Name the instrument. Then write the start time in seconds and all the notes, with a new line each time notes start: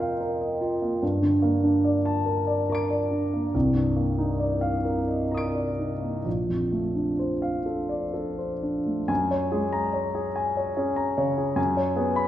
grand piano
Already playing: F2 C3 A#3 F4 A#4 D#5 G5
0.00 F5
0.21 A#4
0.41 D#5
0.61 F4
0.82 A#3
1.02 G2
1.22 D3
1.42 A#3
1.63 D4
1.84 D5
2.05 A5
2.26 A#4
2.47 D5
2.69 A#4 A#5 D6
2.75 D7
2.90 D5
3.11 D4
3.33 A#3
3.54 C2
3.75 G2
3.96 A#3
4.18 D#4
4.39 D5
4.61 F5
4.85 A#4
5.08 D#5
5.31 A#4 A#5 D#6
5.37 D7
5.55 D5
5.79 D#4
6.02 A#3
6.25 A#1
6.50 F2
6.72 A3
6.96 D4
7.19 C5
7.42 F5
7.66 A4
7.89 D5
8.14 A4
8.38 C5
8.63 D4
8.86 A3
9.08 F#2 G#5
9.31 C#5
9.52 G#3 G#4
9.73 A#5
9.93 C#5
10.15 G#4
10.36 G#5
10.57 C#5
10.77 C#4 G#4
10.96 A#5
11.17 C#3 C#5
11.38 G#4
11.56 F#2 G#5
11.77 C#5
11.96 B3 G#4
12.16 B5